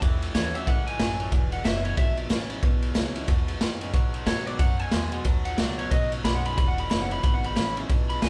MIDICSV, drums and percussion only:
0, 0, Header, 1, 2, 480
1, 0, Start_track
1, 0, Key_signature, 4, "major"
1, 0, Tempo, 328407
1, 25, Time_signature, 4, 2, 24, 8
1, 12120, End_track
2, 0, Start_track
2, 0, Title_t, "Drums"
2, 30, Note_on_c, 9, 36, 116
2, 32, Note_on_c, 9, 51, 83
2, 177, Note_off_c, 9, 36, 0
2, 178, Note_off_c, 9, 51, 0
2, 325, Note_on_c, 9, 51, 71
2, 472, Note_off_c, 9, 51, 0
2, 510, Note_on_c, 9, 38, 120
2, 510, Note_on_c, 9, 51, 90
2, 656, Note_off_c, 9, 38, 0
2, 656, Note_off_c, 9, 51, 0
2, 804, Note_on_c, 9, 51, 71
2, 950, Note_off_c, 9, 51, 0
2, 983, Note_on_c, 9, 36, 106
2, 987, Note_on_c, 9, 51, 85
2, 1129, Note_off_c, 9, 36, 0
2, 1133, Note_off_c, 9, 51, 0
2, 1277, Note_on_c, 9, 51, 65
2, 1423, Note_off_c, 9, 51, 0
2, 1455, Note_on_c, 9, 38, 122
2, 1455, Note_on_c, 9, 51, 95
2, 1601, Note_off_c, 9, 38, 0
2, 1601, Note_off_c, 9, 51, 0
2, 1751, Note_on_c, 9, 51, 57
2, 1897, Note_off_c, 9, 51, 0
2, 1931, Note_on_c, 9, 51, 80
2, 1932, Note_on_c, 9, 36, 110
2, 2077, Note_off_c, 9, 51, 0
2, 2078, Note_off_c, 9, 36, 0
2, 2222, Note_on_c, 9, 51, 64
2, 2368, Note_off_c, 9, 51, 0
2, 2413, Note_on_c, 9, 38, 119
2, 2413, Note_on_c, 9, 51, 81
2, 2560, Note_off_c, 9, 38, 0
2, 2560, Note_off_c, 9, 51, 0
2, 2701, Note_on_c, 9, 51, 56
2, 2847, Note_off_c, 9, 51, 0
2, 2882, Note_on_c, 9, 51, 90
2, 2886, Note_on_c, 9, 36, 121
2, 3028, Note_off_c, 9, 51, 0
2, 3032, Note_off_c, 9, 36, 0
2, 3176, Note_on_c, 9, 51, 59
2, 3322, Note_off_c, 9, 51, 0
2, 3364, Note_on_c, 9, 38, 123
2, 3364, Note_on_c, 9, 51, 87
2, 3510, Note_off_c, 9, 38, 0
2, 3510, Note_off_c, 9, 51, 0
2, 3649, Note_on_c, 9, 51, 68
2, 3795, Note_off_c, 9, 51, 0
2, 3840, Note_on_c, 9, 36, 115
2, 3841, Note_on_c, 9, 51, 82
2, 3986, Note_off_c, 9, 36, 0
2, 3987, Note_off_c, 9, 51, 0
2, 4127, Note_on_c, 9, 51, 63
2, 4274, Note_off_c, 9, 51, 0
2, 4312, Note_on_c, 9, 38, 118
2, 4312, Note_on_c, 9, 51, 92
2, 4458, Note_off_c, 9, 38, 0
2, 4458, Note_off_c, 9, 51, 0
2, 4611, Note_on_c, 9, 51, 67
2, 4758, Note_off_c, 9, 51, 0
2, 4791, Note_on_c, 9, 51, 94
2, 4796, Note_on_c, 9, 36, 119
2, 4937, Note_off_c, 9, 51, 0
2, 4942, Note_off_c, 9, 36, 0
2, 5088, Note_on_c, 9, 51, 67
2, 5234, Note_off_c, 9, 51, 0
2, 5275, Note_on_c, 9, 38, 122
2, 5275, Note_on_c, 9, 51, 96
2, 5421, Note_off_c, 9, 38, 0
2, 5421, Note_off_c, 9, 51, 0
2, 5570, Note_on_c, 9, 51, 66
2, 5716, Note_off_c, 9, 51, 0
2, 5754, Note_on_c, 9, 36, 115
2, 5756, Note_on_c, 9, 51, 84
2, 5901, Note_off_c, 9, 36, 0
2, 5902, Note_off_c, 9, 51, 0
2, 6048, Note_on_c, 9, 51, 62
2, 6194, Note_off_c, 9, 51, 0
2, 6235, Note_on_c, 9, 38, 121
2, 6235, Note_on_c, 9, 51, 84
2, 6381, Note_off_c, 9, 38, 0
2, 6381, Note_off_c, 9, 51, 0
2, 6535, Note_on_c, 9, 51, 61
2, 6681, Note_off_c, 9, 51, 0
2, 6712, Note_on_c, 9, 51, 91
2, 6714, Note_on_c, 9, 36, 124
2, 6858, Note_off_c, 9, 51, 0
2, 6860, Note_off_c, 9, 36, 0
2, 7007, Note_on_c, 9, 51, 58
2, 7153, Note_off_c, 9, 51, 0
2, 7185, Note_on_c, 9, 38, 117
2, 7185, Note_on_c, 9, 51, 93
2, 7331, Note_off_c, 9, 38, 0
2, 7331, Note_off_c, 9, 51, 0
2, 7480, Note_on_c, 9, 51, 61
2, 7626, Note_off_c, 9, 51, 0
2, 7666, Note_on_c, 9, 51, 81
2, 7676, Note_on_c, 9, 36, 107
2, 7812, Note_off_c, 9, 51, 0
2, 7822, Note_off_c, 9, 36, 0
2, 7968, Note_on_c, 9, 51, 62
2, 8114, Note_off_c, 9, 51, 0
2, 8154, Note_on_c, 9, 38, 119
2, 8154, Note_on_c, 9, 51, 87
2, 8300, Note_off_c, 9, 38, 0
2, 8300, Note_off_c, 9, 51, 0
2, 8458, Note_on_c, 9, 51, 66
2, 8604, Note_off_c, 9, 51, 0
2, 8643, Note_on_c, 9, 51, 88
2, 8644, Note_on_c, 9, 36, 115
2, 8789, Note_off_c, 9, 51, 0
2, 8791, Note_off_c, 9, 36, 0
2, 8944, Note_on_c, 9, 51, 68
2, 9090, Note_off_c, 9, 51, 0
2, 9132, Note_on_c, 9, 38, 119
2, 9132, Note_on_c, 9, 51, 98
2, 9278, Note_off_c, 9, 38, 0
2, 9278, Note_off_c, 9, 51, 0
2, 9434, Note_on_c, 9, 51, 65
2, 9580, Note_off_c, 9, 51, 0
2, 9614, Note_on_c, 9, 36, 120
2, 9615, Note_on_c, 9, 51, 87
2, 9760, Note_off_c, 9, 36, 0
2, 9761, Note_off_c, 9, 51, 0
2, 9910, Note_on_c, 9, 51, 60
2, 10056, Note_off_c, 9, 51, 0
2, 10099, Note_on_c, 9, 38, 118
2, 10099, Note_on_c, 9, 51, 87
2, 10245, Note_off_c, 9, 38, 0
2, 10245, Note_off_c, 9, 51, 0
2, 10392, Note_on_c, 9, 51, 64
2, 10538, Note_off_c, 9, 51, 0
2, 10578, Note_on_c, 9, 36, 123
2, 10579, Note_on_c, 9, 51, 84
2, 10724, Note_off_c, 9, 36, 0
2, 10725, Note_off_c, 9, 51, 0
2, 10877, Note_on_c, 9, 51, 64
2, 11023, Note_off_c, 9, 51, 0
2, 11056, Note_on_c, 9, 38, 123
2, 11056, Note_on_c, 9, 51, 92
2, 11202, Note_off_c, 9, 38, 0
2, 11202, Note_off_c, 9, 51, 0
2, 11355, Note_on_c, 9, 51, 60
2, 11501, Note_off_c, 9, 51, 0
2, 11540, Note_on_c, 9, 51, 82
2, 11541, Note_on_c, 9, 36, 112
2, 11686, Note_off_c, 9, 51, 0
2, 11687, Note_off_c, 9, 36, 0
2, 11834, Note_on_c, 9, 51, 61
2, 11980, Note_off_c, 9, 51, 0
2, 12018, Note_on_c, 9, 38, 112
2, 12018, Note_on_c, 9, 51, 86
2, 12120, Note_off_c, 9, 38, 0
2, 12120, Note_off_c, 9, 51, 0
2, 12120, End_track
0, 0, End_of_file